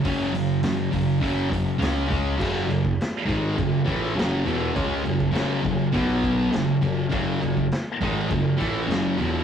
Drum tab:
CC |----------------|x-x-x-x-x-x-x-x-|x-x-x-x-x-x-x-x-|x-x-x-x-x-x-x-x-|
HH |o-o-o-o-o-o-o-o-|----------------|----------------|----------------|
SD |-o--o-------o---|----o-------o---|----o-------o---|----o-------o---|
BD |o-----o-o-o---o-|o--o--o-o-o-----|o--o--o-o-o-----|o--o--o-o-o-----|